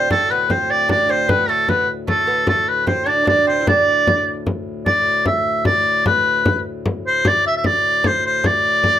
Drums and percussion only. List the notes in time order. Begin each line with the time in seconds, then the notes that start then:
0.10 frame drum
0.50 frame drum
0.70 frame drum
0.89 frame drum
1.29 frame drum
1.69 frame drum
1.89 frame drum
2.08 frame drum
2.47 frame drum
2.87 frame drum
3.08 frame drum
3.27 frame drum
3.67 frame drum
4.07 frame drum
4.47 frame drum
4.86 frame drum
5.07 frame drum
5.26 frame drum
5.65 frame drum
6.06 frame drum
6.25 frame drum
6.45 frame drum
6.86 frame drum
7.25 frame drum
7.45 frame drum
7.64 frame drum
8.04 frame drum
8.44 frame drum
8.64 frame drum
8.84 frame drum